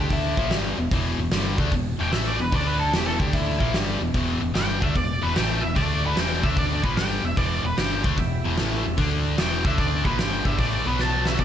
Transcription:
Already playing: fingered electric bass D2, distorted electric guitar D3 A3
0.00 distorted electric guitar D4, lead electric guitar G4
0.10 lead electric guitar E4, kick, open hi-hat
0.37 fingered electric bass A#1, distorted electric guitar A#2 F3 A#3, kick
0.51 fingered electric bass G1, distorted electric guitar G2 D3 G3, snare, open hi-hat
0.78 fingered electric bass E1, distorted electric guitar E2 B2
0.91 fingered electric bass E1, distorted electric guitar E2 B2 E3, kick, open hi-hat
1.18 fingered electric bass E1, distorted electric guitar E2 B2
1.31 fingered electric bass G1, distorted electric guitar G2 D3 G3, snare, open hi-hat
1.58 fingered electric bass D2, distorted electric guitar D3 A3 D4, kick
1.72 fingered electric bass E1, distorted electric guitar E2 B2, kick, open hi-hat
1.99 fingered electric bass E1, distorted electric guitar E2 B2 E3, lead electric guitar G5
2.11 fingered electric bass A1, distorted electric guitar A2 E3 A3, lead electric guitar E5, snare, open hi-hat
2.28 lead electric guitar D5
2.39 fingered electric bass E1, distorted electric guitar E2 B2, lead electric guitar B4
2.52 fingered electric bass D2, distorted electric guitar D3 A3 D4, lead electric guitar D5, kick, open hi-hat
2.67 lead electric guitar B4
2.79 lead electric guitar A4
2.92 fingered electric bass E1, distorted electric guitar E2 B2 E3, lead electric guitar G4, snare, open hi-hat
3.06 lead electric guitar A4
3.20 fingered electric bass D2, distorted electric guitar D3 A3 D4, lead electric guitar G4, kick
3.33 lead electric guitar E4, kick, open hi-hat
3.60 fingered electric bass A#1, distorted electric guitar A#2 F3 A#3, kick
3.73 fingered electric bass G1, distorted electric guitar G2 D3 G3, snare, open hi-hat
4.00 fingered electric bass E1, distorted electric guitar E2 B2
4.14 fingered electric bass E1, distorted electric guitar E2 B2 E3, kick, open hi-hat
4.40 fingered electric bass E1, distorted electric guitar E2 B2
4.54 fingered electric bass G1, distorted electric guitar G2 D3 G3, lead electric guitar G5, snare, open hi-hat
4.80 fingered electric bass D2, distorted electric guitar D3 A3 D4, lead electric guitar E5, kick
4.94 fingered electric bass E1, distorted electric guitar E2 B2, lead electric guitar D5, kick, open hi-hat
5.21 fingered electric bass E1, distorted electric guitar E2 B2 E3, lead electric guitar B4
5.34 fingered electric bass A1, distorted electric guitar A2 E3 A3, lead electric guitar G5, snare, open hi-hat
5.61 fingered electric bass E1, distorted electric guitar E2 B2, lead electric guitar E5
5.75 fingered electric bass D2, distorted electric guitar D3 A3 D4, lead electric guitar D5, kick, open hi-hat
6.07 lead electric guitar B4
6.15 fingered electric bass E1, distorted electric guitar E2 B2 E3, lead electric guitar G5, snare, open hi-hat
6.43 fingered electric bass D2, distorted electric guitar D3 A3 D4, lead electric guitar E5, kick
6.57 lead electric guitar D5, kick, open hi-hat
6.83 fingered electric bass A#1, distorted electric guitar A#2 F3 A#3, lead electric guitar B4, kick
6.96 fingered electric bass G1, distorted electric guitar G2 D3 G3, lead electric guitar G5, snare, open hi-hat
7.23 fingered electric bass E1, distorted electric guitar E2 B2, lead electric guitar E5
7.37 fingered electric bass E1, distorted electric guitar E2 B2 E3, lead electric guitar D5, kick, open hi-hat
7.63 fingered electric bass E1, distorted electric guitar E2 B2, lead electric guitar B4
7.77 fingered electric bass G1, distorted electric guitar G2 D3 G3, lead electric guitar G5, snare, open hi-hat
8.03 fingered electric bass D2, distorted electric guitar D3 A3 D4, kick
8.17 fingered electric bass E1, distorted electric guitar E2 B2, tonewheel organ B3 E4 G4 E5, kick, open hi-hat
8.44 fingered electric bass E1, distorted electric guitar E2 B2 E3
8.57 fingered electric bass A1, distorted electric guitar A2 E3 A3, snare, open hi-hat
8.84 fingered electric bass E1, distorted electric guitar E2 B2
8.97 fingered electric bass D2, distorted electric guitar D3 A3 D4, tonewheel organ D4 A4 D5, kick, open hi-hat
9.37 fingered electric bass E1, distorted electric guitar E2 B2 E3, lead electric guitar G5, snare, open hi-hat
9.64 fingered electric bass D2, distorted electric guitar D3 A3 D4, tonewheel organ D4 A4 D5, lead electric guitar E5, kick
9.78 lead electric guitar D5, kick, open hi-hat
10.03 fingered electric bass A#1, distorted electric guitar A#2 F3 A#3, tonewheel organ G3 B3 E4 B4, lead electric guitar B4, kick
10.19 fingered electric bass G1, distorted electric guitar G2 D3 G3, lead electric guitar G5, snare, open hi-hat
10.45 fingered electric bass G1, distorted electric guitar G2 D3 G3, lead electric guitar E5, kick
10.59 fingered electric bass A1, distorted electric guitar A2 E3 A3, lead electric guitar D5, kick, open hi-hat
10.85 fingered electric bass B1, distorted electric guitar B2 F#3 B3, tonewheel organ B3 F#4 B4, lead electric guitar B4
10.99 lead electric guitar A5, snare
11.26 lead electric guitar E5, snare
11.39 fingered electric bass E1, distorted electric guitar E2 B2, tonewheel organ G3 B3 E4 B4, lead electric guitar D5, kick, open hi-hat

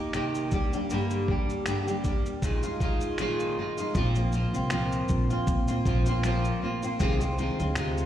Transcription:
Already playing: nylon-string guitar D#3 A#3 D#4 G4
0.13 nylon-string guitar C3 D#3 A#3 D#4 G4, finger snap, shaker
0.35 shaker
0.51 nylon-string guitar G3 A#3 D4 G4, kick, shaker
0.73 nylon-string guitar G3 A#3 D4 G4, shaker
0.90 nylon-string guitar G2 D3 G3 A#3 D4 G4, shaker
1.10 shaker
1.28 nylon-string guitar G3 A#3 D4 G4, kick
1.50 shaker
1.66 nylon-string guitar G2 D3 G3 A#3 D4 G4, finger snap, shaker
1.87 nylon-string guitar G3 A#3 D4 G4, shaker
2.04 nylon-string guitar G3 A#3 D4 G4, kick, shaker
2.26 shaker
2.42 nylon-string guitar A#2 D#3 G#3 D#4 F4, kick, shaker
2.63 nylon-string guitar G#3 D#4 F4, shaker
2.80 nylon-string guitar D#3 G#3 D#4 F4, kick, shaker
3.01 shaker
3.18 nylon-string guitar A#2 D#3 G#3 D#4 F4, finger snap, shaker
3.40 shaker
3.58 nylon-string guitar D#3 G#3 D#4 F4
3.78 nylon-string guitar G#3 D#4 F4, shaker
3.95 upright bass A#1, nylon-string guitar A#2 F3 A#3 C4 F4, kick, shaker
4.15 nylon-string guitar A#3 C4 F4, shaker
4.32 nylon-string guitar F3 A#3 C4 F4, shaker
4.54 upright bass C2, nylon-string guitar A#3 C4 F4, shaker
4.70 nylon-string guitar A#2 F3 A#3 C4 F4, finger snap, shaker
4.92 shaker
5.08 upright bass A#1, kick, shaker
5.30 nylon-string guitar A#3 C4 F4, shaker
5.47 upright bass A#2, kick, shaker
5.68 nylon-string guitar A#3 C4 F4, shaker
5.85 upright bass A#1, nylon-string guitar F3 A#3 C4 F4, kick, shaker
6.06 nylon-string guitar A#3 C4 F4, shaker
6.23 nylon-string guitar A#2 F3 A#3 C4 F4, finger snap, shaker
6.44 shaker
6.62 nylon-string guitar F3 A#3 C4 F4
6.83 nylon-string guitar A#3 C4 F4, shaker
7.00 upright bass C2, nylon-string guitar C3 D#3 G#3 C4 F4, kick, shaker
7.20 nylon-string guitar G#3 C4 F4, shaker
7.38 nylon-string guitar D#3 G#3 C4 F4, shaker
7.59 upright bass D2, nylon-string guitar G#3 C4 F4, shaker
7.75 nylon-string guitar C3 G#3 C4 F4, finger snap, shaker
7.98 shaker

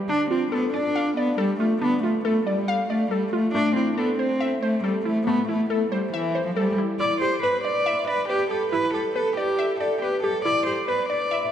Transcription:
0.09 cello D4, synth pluck D4
0.30 cello C4, synth pluck F4
0.52 cello B3, synth pluck A4
0.74 cello D4, synth pluck D5
0.96 synth pluck F5
1.17 cello B3, synth pluck D5
1.38 cello G3, synth pluck A4
1.60 cello A3, synth pluck F4
1.82 cello B3, synth pluck D4
2.03 cello A3, synth pluck F4
2.25 cello A3, synth pluck A4
2.47 cello G3, synth pluck D5
2.68 synth pluck F5
2.90 cello A3, synth pluck D5
3.11 cello G3, synth pluck A4
3.33 cello A3, synth pluck F4
3.54 synth pluck A3, cello D4
3.76 cello C4, synth pluck E4
3.97 cello B3, synth pluck A4
4.19 cello C4, synth pluck C5
4.40 synth pluck E5
4.62 cello A3, synth pluck C5
4.84 cello G3, synth pluck A4
5.05 cello A3, synth pluck E4
5.27 synth pluck A3, cello B3
5.48 cello A3, synth pluck E4
5.70 cello A3, synth pluck A4
5.92 cello G3, synth pluck C5
6.13 cello E3, synth pluck E5
6.35 synth pluck C5
6.46 cello F3
6.56 cello G3, synth pluck A4
6.78 synth pluck E4
7.00 synth pluck E4, cello D5
7.21 synth pluck G4, cello C5
7.43 cello B4, synth pluck B4
7.64 cello D5, synth pluck D5
7.86 synth pluck E5
8.07 cello B4, synth pluck D5
8.29 cello G4, synth pluck B4
8.51 synth pluck G4, cello A4
8.72 synth pluck E4, cello B4
8.94 synth pluck G4, cello A4
9.15 cello A4, synth pluck B4
9.37 cello G4, synth pluck D5
9.59 synth pluck E5
9.80 cello A4, synth pluck D5
10.02 cello G4, synth pluck B4
10.23 synth pluck G4, cello A4
10.45 synth pluck E4, cello D5
10.67 synth pluck G4, cello C5
10.88 cello B4, synth pluck B4
11.10 cello D5, synth pluck D5
11.31 synth pluck E5

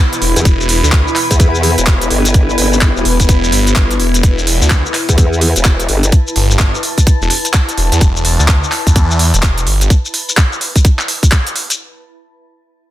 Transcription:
Already playing: ambient pad B3 E4 B4 E5 B5
0.13 closed hi-hat, shaker
0.22 detuned saw bass E1, open hi-hat
0.36 wobble bass E2, closed hi-hat, shaker
0.45 detuned saw bass E1, ambient pad B4, kick, closed hi-hat, shaker
0.61 shaker
0.69 open hi-hat
0.84 detuned saw bass D2, shaker
0.92 kick, clap, shaker
1.08 shaker
1.16 clap, open hi-hat
1.31 wobble bass E2, kick, closed hi-hat, shaker
1.40 kick, closed hi-hat, shaker
1.55 shaker
1.63 open hi-hat
1.78 wobble bass E1, closed hi-hat, shaker
1.87 kick, clap, closed hi-hat, shaker
2.01 closed hi-hat, shaker
2.11 wobble bass G1, open hi-hat
2.25 closed hi-hat, shaker
2.34 kick, closed hi-hat, shaker
2.50 shaker
2.58 wobble bass G1, open hi-hat
2.73 shaker
2.81 kick, clap, shaker
2.96 wobble bass E1, shaker
3.05 detuned saw bass E1, open hi-hat
3.20 kick, closed hi-hat, shaker
3.29 kick, closed hi-hat, shaker
3.44 shaker
3.52 detuned saw bass G1, open hi-hat
3.67 closed hi-hat, shaker
3.76 kick, clap, closed hi-hat, shaker
3.91 closed hi-hat, shaker
4.00 detuned saw bass E1, open hi-hat
4.14 closed hi-hat, shaker
4.23 ambient pad E5, kick, closed hi-hat, shaker
4.34 ambient pad A5
4.39 shaker
4.47 open hi-hat
4.62 detuned saw bass D2, shaker
4.70 kick, clap, shaker
4.86 shaker
4.94 clap, open hi-hat
5.09 wobble bass E2, kick, closed hi-hat, shaker
5.18 kick, closed hi-hat, shaker
5.33 shaker
5.41 open hi-hat
5.56 wobble bass E1, closed hi-hat, shaker
5.65 kick, clap, closed hi-hat, shaker
5.80 closed hi-hat, shaker
5.89 wobble bass G1, open hi-hat
6.03 closed hi-hat, shaker
6.12 kick, closed hi-hat, shaker
6.27 shaker
6.36 detuned saw bass G1, open hi-hat
6.51 shaker
6.59 kick, clap, shaker
6.75 shaker
6.83 open hi-hat
6.98 kick, closed hi-hat, shaker
7.07 kick, closed hi-hat, shaker
7.21 detuned saw bass E1, shaker
7.30 open hi-hat
7.45 closed hi-hat, shaker
7.54 kick, clap, closed hi-hat, shaker
7.69 closed hi-hat, shaker
7.78 detuned saw bass E1, open hi-hat
7.92 detuned saw bass E2, closed hi-hat, shaker
8.01 detuned saw bass E1, kick, closed hi-hat, shaker
8.16 shaker
8.25 open hi-hat
8.39 detuned saw bass D2, shaker
8.48 kick, clap, shaker
8.64 shaker
8.72 clap, open hi-hat
8.87 detuned saw bass E2, kick, closed hi-hat, shaker
8.96 kick, closed hi-hat, shaker
9.11 shaker
9.19 open hi-hat
9.34 detuned saw bass E1, closed hi-hat, shaker
9.43 kick, clap, closed hi-hat, shaker
9.58 closed hi-hat, shaker
9.67 detuned saw bass G1, open hi-hat
9.81 closed hi-hat, shaker
9.90 kick, closed hi-hat, shaker
10.06 shaker
10.14 open hi-hat
10.29 shaker
10.37 kick, clap, shaker
10.53 shaker
10.61 open hi-hat
10.76 kick, closed hi-hat, shaker
10.85 kick, closed hi-hat, shaker
10.99 clap, shaker
11.08 open hi-hat
11.23 kick, closed hi-hat, shaker
11.32 kick, clap, closed hi-hat, shaker
11.47 closed hi-hat, shaker
11.56 open hi-hat
11.70 closed hi-hat, shaker

